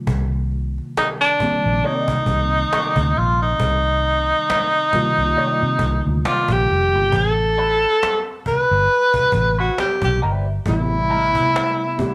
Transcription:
0.07 0.78 C2 loud
0.07 cajon bass loud
0.31 cajon slap soft
0.51 cajon slap soft
0.78 cajon slap soft
0.97 1.08 D#4 medium
0.97 cajon slap loud
0.97 cajon slap medium
1.21 1.87 D4 medium
1.40 2.64 C3 medium
1.40 2.64 D#3 medium
1.40 2.65 G3 medium
1.40 2.65 A#3 medium
1.40 2.65 C4 medium
1.40 muted fingered electric bass stroke soft
1.40 cajon bass medium
1.64 1.81 A#1 medium
1.64 cajon slap soft
1.84 2.07 A#3 medium
1.84 2.07 D#4 medium
1.84 3.19 D#4 loud
1.84 2.07 G4 medium
1.84 2.08 D5 medium
1.84 cajon slap soft
2.08 cajon bass loud
2.26 2.63 C2 medium
2.26 cajon bass medium
2.53 cajon slap soft
2.73 2.95 A#3 medium
2.73 2.96 D#4 medium
2.73 2.96 G4 medium
2.73 2.96 D5 medium
2.73 cajon slap loud
2.73 cajon slap medium
2.96 3.12 D2 medium
2.96 cajon bass medium
3.16 3.53 A#1 medium
3.16 3.41 F4 loud
3.16 cajon slap soft
3.40 6.22 D#4 loud
3.40 cajon slap soft
3.60 4.31 C2 medium
3.60 cajon bass loud
3.83 cajon slap soft
4.04 cajon slap soft
4.30 cajon slap soft
4.50 cajon slap loud
4.50 cajon slap medium
4.73 cajon slap soft
4.93 6.17 C3 medium
4.93 6.17 D#3 medium
4.93 6.18 G3 medium
4.93 6.18 A#3 medium
4.93 6.18 F4 medium
4.93 muted fingered electric bass stroke soft
4.93 cajon bass medium
5.16 5.34 C2 medium
5.16 cajon slap soft
5.37 5.60 A#3 medium
5.37 5.60 D#4 medium
5.37 5.60 G4 medium
5.37 5.60 D5 medium
5.37 cajon slap soft
5.61 5.78 C3 medium
5.61 cajon slap soft
5.79 6.00 C2 medium
5.79 cajon bass medium
6.06 6.22 D2 medium
6.06 cajon slap soft
6.25 6.48 A#3 medium
6.25 6.48 D#4 medium
6.25 6.53 F4 medium
6.25 6.48 G4 medium
6.25 6.49 D5 medium
6.25 cajon slap loud
6.25 cajon slap medium
6.48 6.65 A#1 medium
6.48 7.17 G4 medium
6.48 cajon bass medium
6.68 6.95 F1 medium
6.68 cajon slap soft
6.95 7.10 G1 medium
7.12 7.84 A1 loud
7.12 8.30 A4 loud
7.12 cajon bass medium
7.36 cajon slap soft
7.56 7.98 G3 medium
7.56 7.99 C4 medium
7.56 7.99 E4 medium
7.56 7.99 B4 medium
7.56 cajon slap soft
7.84 cajon slap soft
8.03 cajon slap loud
8.03 cajon slap medium
8.46 9.55 B4 loud
8.46 muted fingered electric bass stroke soft
8.46 cajon bass medium
8.69 8.87 G1 medium
8.69 cajon slap soft
8.91 cajon slap soft
9.14 cajon bass medium
9.32 9.69 A1 medium
9.32 cajon bass medium
9.59 9.74 G3 soft
9.59 9.74 C4 medium
9.59 9.73 E4 medium
9.59 9.77 F#4 medium
9.59 9.73 B4 medium
9.59 cajon slap soft
9.78 10.01 G4 medium
9.78 muted clean electric guitar stroke soft
9.78 cajon slap loud
9.78 cajon slap medium
10.02 10.18 B1 loud
10.02 10.20 G4 medium
10.02 cajon bass medium
10.22 10.58 G1 medium
10.22 10.45 G3 medium
10.22 10.45 C4 medium
10.22 10.45 E4 medium
10.22 10.46 B4 medium
10.22 cajon slap soft
10.46 cajon slap soft
10.66 11.37 A1 medium
10.66 10.98 C3 medium
10.66 10.99 G3 medium
10.66 10.99 A3 medium
10.66 10.99 B3 medium
10.66 12.14 E4 loud
10.66 10.99 E4 medium
10.66 cajon bass medium
10.89 cajon slap soft
11.10 11.27 F#3 medium
11.10 11.28 B3 medium
11.10 11.28 D#4 medium
11.10 11.28 A#4 medium
11.10 cajon slap soft
11.27 11.51 G3 medium
11.27 11.51 C4 medium
11.27 11.51 E4 medium
11.27 11.51 B4 medium
11.35 cajon bass medium
11.56 cajon slap loud
11.56 cajon slap medium
11.98 12.14 C3 medium
11.98 12.14 G3 medium
11.98 12.14 A3 medium
11.98 12.14 B3 medium
11.98 12.14 G4 medium
11.98 muted fingered electric bass stroke soft
11.98 cajon bass medium

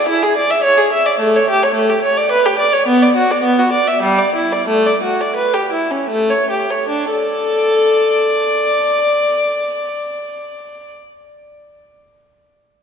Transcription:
0.00 0.10 D5 medium
0.09 0.23 E4 medium
0.23 0.37 G#4 medium
0.37 0.50 D5 medium
0.50 0.64 E5 medium
0.64 0.77 C#5 medium
0.77 0.91 G#4 medium
0.93 1.06 E5 medium
1.06 1.20 D5 medium
1.20 1.34 A3 medium
1.36 1.50 C#5 medium
1.50 1.63 G4 medium
1.63 1.77 C#5 medium
1.75 1.89 A3 medium
1.90 2.04 G4 medium
2.02 2.17 C#5 medium
2.17 2.31 D5 medium
2.32 2.45 B4 medium
2.46 2.59 G4 medium
2.59 2.72 D5 medium
2.73 2.87 C#5 medium
2.87 3.01 B3 medium
3.02 3.16 D5 medium
3.16 3.30 F#4 medium
3.31 3.44 D5 medium
3.44 3.58 B3 medium
3.59 3.73 F#4 medium
3.72 3.87 D5 medium
3.87 4.03 E5 medium
4.02 4.18 G3 medium
4.18 4.35 D5 medium
4.35 4.51 E4 medium
4.52 4.69 D5 medium
4.68 4.85 A3 medium
4.86 5.03 D5 soft
5.03 5.19 F#4 soft
5.21 5.37 D5 medium
5.36 5.53 B4 medium
5.54 5.71 G4 medium
5.72 5.90 E4 soft
5.91 6.09 C#4 soft
6.10 6.28 A3 medium
6.30 6.49 C#5 medium
6.50 6.69 G4 soft
6.70 6.89 C#5 soft
6.89 7.11 D4 medium
7.11 8.66 A4 medium
7.11 10.93 D5 medium

